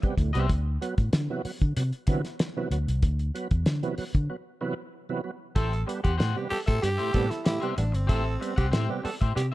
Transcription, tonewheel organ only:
0.03 C3 G3 B3
0.19 A2
0.35 C3 G3 B3
0.81 F#3 B3
1.30 C3 E3 F#3 B3
1.45 F#3 B3
1.77 F#3 B3
2.08 C3 E3 F#3 B3
2.57 C3 E3 F#3 B3
2.72 F#3 B3
3.34 F#3 B3
3.83 C3 E3 F#3 B3
3.98 F#3 B3
4.30 F#3 B3
4.61 C3 E3 F#3 B3
5.09 C3 E3 F#3 B3
5.24 F#3 B3
5.56 A2
5.87 G3 B3
6.19 A2
6.36 C3 G3 B3
6.51 G3 B3
6.83 G3 B3
7.00 A2
7.14 C3 G3 B3
7.46 A2
7.62 C3 G3 B3
7.78 G3 B3
8.09 A2
8.41 G3 B3
8.73 A2
8.89 C3 G3 B3
9.04 G3 B3
9.35 G3 B3

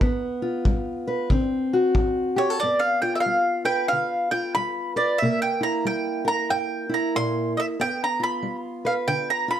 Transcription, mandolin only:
Already playing: A#5
2.38 C#5
2.60 D5
2.80 F5
3.02 G5
3.15 E5
3.20 F5
3.65 G5
3.88 F5
4.31 G5
4.55 B5
4.97 D5
5.18 E5
5.42 G5
5.63 A#5
5.87 G5
6.28 A#5
6.50 G5
6.94 A#5
7.16 C6
7.57 D#5 E5
7.81 G5
8.04 A#5
8.23 B5
8.86 F5
9.08 G5
9.30 A#5
9.51 B5

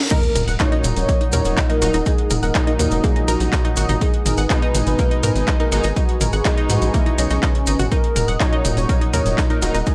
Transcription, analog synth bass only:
0.35 D#1
0.48 D#1
0.84 D#1
0.96 D#1
1.33 D#2
1.45 D#1
1.82 D#1
1.94 D#1
2.31 D#1
2.43 D#1
2.79 D#2
2.92 E1
3.28 A#1
3.40 A#1
3.77 G#1
3.89 G#1
4.26 G#1
4.38 G#1
4.74 G#1
4.87 G#1
5.23 G#2
5.35 G#1
5.72 G#1
5.84 G#1
6.21 G#1
6.33 G#1
6.70 G#2
6.82 A#1
7.18 B1
7.31 B1
7.67 G#1
7.79 G#1
8.16 D#1
8.28 D#1
8.65 D#1
8.77 D#1
9.14 D#2
9.26 D#1
9.62 D#1
9.75 D#1

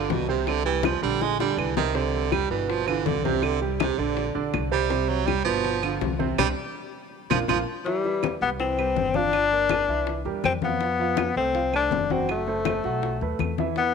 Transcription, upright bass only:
0.10 C2
1.02 A#1
1.57 C2
2.50 G1
3.06 C2
3.98 A#1
4.35 A#1
4.54 C2
5.46 G1
6.01 C2
6.38 C2
7.30 A#1
7.49 A#1
8.41 C2
8.96 G1
9.88 C2
10.25 E2
10.44 F2
11.36 C2
11.92 F#1
12.84 B1
13.21 D#2
13.40 E2

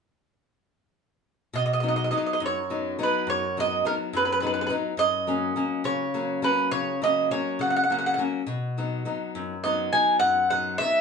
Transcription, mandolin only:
1.56 D#5
1.66 D#5
1.73 D#5
1.80 D#5
1.88 D#5
1.96 D#5
2.04 D#5
2.11 D#5
2.18 D#5
2.26 D#5
2.33 D#5
2.46 C#5
3.03 B4
3.30 C#5
3.60 D#5
3.87 A#4
4.17 B4
4.25 B4
4.32 B4
4.40 B4
4.47 B4
4.54 B4
4.61 B4
4.67 B4
4.99 D#5
5.85 C#5
6.44 B4
6.71 C#5
7.04 D#5
7.31 C#5
7.61 F#5
7.70 F#5
7.76 F#5
7.83 F#5
7.92 F#5
7.99 F#5
8.06 F#5
8.14 F#5
9.64 D#5
9.93 G#5
10.20 F#5
10.50 F#5
10.78 E5

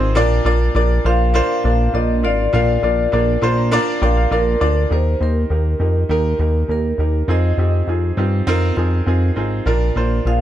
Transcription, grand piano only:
Already playing: C4 D#4 F4 G#4 A#4 C5 D5
0.15 A#2 A#3 D4 F4 A#4 D5
0.45 A#3 D4 F4 A#4 D5
0.75 A#3 D4 F4 A#4 D5
1.04 A#3 D4 F4 A#4 C5
1.34 A#3 D4 F4 A#4 C5
1.64 A#3 D4 F4 A#4 D5
1.93 A#3 D4 F4 A#4 D5
2.23 A#3 D4 F4 A#4 F5
2.53 A#2 A#3 D4 F4 A#4 F5
2.82 A#3 D4 F4 A#4 D5
3.12 A#3 D4 F4 A#4 D5
3.42 A#3 D4 F4 A#4 C5 C6
3.57 A#5
3.71 A#3 D4 F4 A#4 D5 A#5
4.01 A#3 D4 F4 A#4 D5 G5
4.17 F5
4.31 A#3 D4 F4 A#4 D5 F5
4.60 A#3 D4 F4 A#4 D5
4.90 D#3 A#3 D#4 G4 A#4
5.20 A#3 D#4 G4 C5
5.50 A#3 D#4 G4 A#4
5.79 A#3 D#4 G4 A#4
6.09 A#3 D#4 G4 A#4
6.39 A#3 D#4 G4 A#4
6.69 A#3 D#4 G4 A#4
6.99 A#3 D#4 G4 A#4
7.28 C4 D#4 F4 G#4
7.58 C4 D#4 F4 G4
7.88 C4 D#4 F4 G#4
8.17 C4 D#4 F4 G4
8.47 C4 D#4 F4 A#4
8.77 C4 D#4 F4 G#4
9.06 C4 D#4 F4 G#4
9.36 C4 D#4 F4 G#4
9.66 A#2 A#3 D4 F4 A#4
9.96 A#3 D4 F4 C5
10.25 A#3 D4 F4 G#4

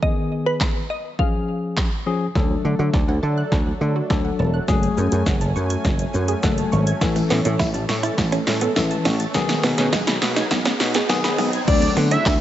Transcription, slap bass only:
2.35 D2
2.65 D3
2.79 D3
2.93 D2
3.08 D2
3.23 D3
3.52 D2
3.81 D3
4.10 D2
4.39 E1
4.68 F#1
4.97 F#2
5.12 F#2
5.26 F#1
5.41 F#1
5.56 F#2
5.85 F#1
6.14 F#2
6.43 F#1
6.72 G#1
7.01 A1
7.31 A2
7.45 A2
7.59 A1
7.74 A1
7.89 A2
8.18 A1
8.47 A2
8.76 A1
9.05 A1
9.34 B1
9.64 B2
9.78 B2
9.93 B1
10.07 B1
10.22 B2
10.51 B1
10.80 B2
11.09 B1
11.38 B1
11.68 D2
11.97 D3
12.26 D2

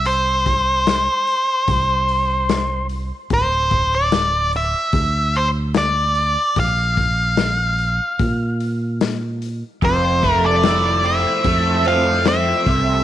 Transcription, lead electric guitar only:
0.06 C5
3.34 C5
3.95 D5
4.56 E5
5.37 C5
5.78 D5
6.60 F5
9.85 C5
10.32 A#4
10.46 D5
11.06 E5
11.88 F5
12.28 E5

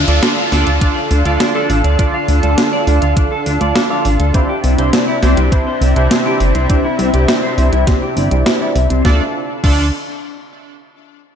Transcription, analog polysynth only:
0.08 D4 F4 A4 D5
0.52 D4 F4 A4 D5
0.82 D4 F4 A4 D5
1.26 D4 F4 A4 D5
1.55 D4 F4 A4 D5
1.99 D4 F4 A4 D5
2.43 D4 F4 A4 D5
2.87 D4 F4 A4 D5
3.17 D4 F4 A4 D5
3.61 D4 F4 A4 D5
3.90 D4 F4 A4 D5
4.34 D4 E4 G4 C5
4.79 D4 E4 G4 C5
5.23 D4 E4 G4 C5
5.52 D4 E4 G4 C5
5.96 D4 E4 G4 C5
6.26 D4 E4 G4 C5
6.70 D4 E4 G4 C5
7.14 D4 E4 G4 C5
7.58 D4 E4 G4 C5
7.87 D4 E4 G4 C5
8.17 D4 E4 G4 C5
8.32 D4 E4 G4 D5
8.61 D4 E4 G4 D5
9.05 D4 F4 A4 D5
9.64 D4 F4 A4 D5

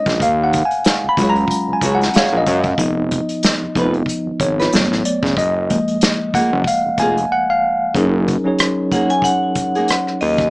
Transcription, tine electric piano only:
Already playing: G#3 C#4 D#4 C#5 D#5
0.22 F5
0.44 F#5
0.65 G#5
1.09 B5
1.18 F#3 G#3 C#4 F4
1.30 A#5
1.73 G#5
1.95 F#5
2.16 F5
2.38 D#5
2.79 F3 B3 D#4
3.75 F3 B3 D#4
4.41 C#5
4.73 F#3 A3 B3
5.05 D5
5.38 D#5
5.70 F3 G#3 A#3
6.35 F#5
6.67 F5
7.00 G#5
7.32 F#5
7.50 F5
7.94 F#3 C#4 D#4 G#4 A#4
8.44 F#3 C#4 D#4 G#4 C#5
8.91 F#3 C#4 D#4 G#4 C#5

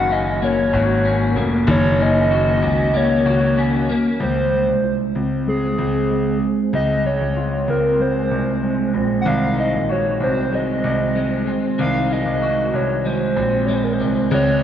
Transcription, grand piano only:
Already playing: F#1
0.73 G#1
1.36 F1
1.67 F#1
2.62 C#2
3.26 C#2
4.20 C#2
4.68 C2
5.15 C#2
5.78 C#2
6.73 C#2
7.21 C#2
7.68 C#2
8.31 C2
8.94 A#1
9.26 C2
9.73 A#1
10.20 C2
10.84 C2
11.79 C2
12.25 C2
12.73 C2
13.37 A#1
14.00 C2
14.31 C#2

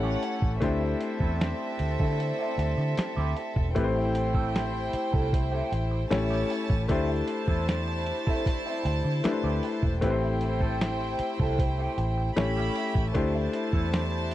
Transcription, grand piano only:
Already playing: A3 C#4 E4 G4 C#5
0.60 A3 D4 E4 G4 C5
3.75 A3 C4 E4 G4 B4
3.84 C5
6.10 A3 C#4 E4 G4 C#5
6.88 A3 D4 E4 G4 C5
9.23 A3 D4 E4 G4 B4
9.31 C5
10.01 A3 C4 E4 G4 B4
10.10 C5
12.36 A3 C#4 E4 G4 C#5
13.14 A3 D4 E4 G4 C5

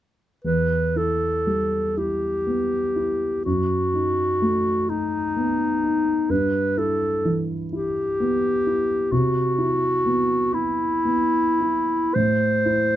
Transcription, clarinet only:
0.45 B4
0.97 A4
1.98 G4
3.45 F#4
4.89 D#4
6.31 B4
6.78 A4
7.73 G4
9.12 F#4
10.54 E4
12.15 C5

